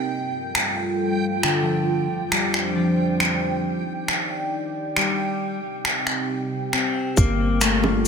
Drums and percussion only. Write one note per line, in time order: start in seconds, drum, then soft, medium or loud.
0.55 finger snap loud
1.43 finger snap medium
2.32 finger snap loud
2.54 finger snap medium
3.20 finger snap medium
4.08 finger snap medium
4.96 finger snap medium
5.85 finger snap medium
6.07 finger snap medium
6.73 finger snap medium
7.17 kick loud
7.17 shaker medium
7.61 finger snap loud
7.61 shaker medium
7.84 low bongo soft